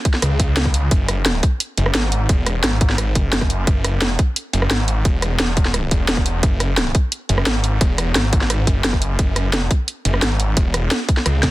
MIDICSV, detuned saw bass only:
0, 0, Header, 1, 2, 480
1, 0, Start_track
1, 0, Tempo, 344828
1, 1271, Time_signature, 4, 2, 24, 8
1, 16019, End_track
2, 0, Start_track
2, 0, Title_t, "Detuned saw bass"
2, 0, Program_c, 0, 39
2, 310, Note_on_c, 0, 37, 100
2, 1252, Note_off_c, 0, 37, 0
2, 1271, Note_on_c, 0, 30, 98
2, 1972, Note_off_c, 0, 30, 0
2, 2470, Note_on_c, 0, 30, 104
2, 2692, Note_off_c, 0, 30, 0
2, 2710, Note_on_c, 0, 32, 102
2, 3172, Note_off_c, 0, 32, 0
2, 3191, Note_on_c, 0, 28, 99
2, 3652, Note_off_c, 0, 28, 0
2, 3671, Note_on_c, 0, 32, 103
2, 4372, Note_off_c, 0, 32, 0
2, 4391, Note_on_c, 0, 30, 101
2, 5092, Note_off_c, 0, 30, 0
2, 5111, Note_on_c, 0, 30, 102
2, 5812, Note_off_c, 0, 30, 0
2, 6310, Note_on_c, 0, 30, 100
2, 6532, Note_off_c, 0, 30, 0
2, 6550, Note_on_c, 0, 32, 98
2, 7011, Note_off_c, 0, 32, 0
2, 7031, Note_on_c, 0, 28, 100
2, 7492, Note_off_c, 0, 28, 0
2, 7511, Note_on_c, 0, 28, 100
2, 8212, Note_off_c, 0, 28, 0
2, 8231, Note_on_c, 0, 28, 104
2, 8932, Note_off_c, 0, 28, 0
2, 8951, Note_on_c, 0, 30, 102
2, 9652, Note_off_c, 0, 30, 0
2, 10151, Note_on_c, 0, 30, 102
2, 10372, Note_off_c, 0, 30, 0
2, 10391, Note_on_c, 0, 32, 104
2, 10852, Note_off_c, 0, 32, 0
2, 10871, Note_on_c, 0, 28, 99
2, 11332, Note_off_c, 0, 28, 0
2, 11351, Note_on_c, 0, 32, 103
2, 12052, Note_off_c, 0, 32, 0
2, 12071, Note_on_c, 0, 30, 100
2, 12772, Note_off_c, 0, 30, 0
2, 12791, Note_on_c, 0, 30, 102
2, 13492, Note_off_c, 0, 30, 0
2, 13991, Note_on_c, 0, 30, 103
2, 14212, Note_off_c, 0, 30, 0
2, 14230, Note_on_c, 0, 32, 101
2, 14692, Note_off_c, 0, 32, 0
2, 14711, Note_on_c, 0, 28, 102
2, 15172, Note_off_c, 0, 28, 0
2, 15670, Note_on_c, 0, 37, 97
2, 16019, Note_off_c, 0, 37, 0
2, 16019, End_track
0, 0, End_of_file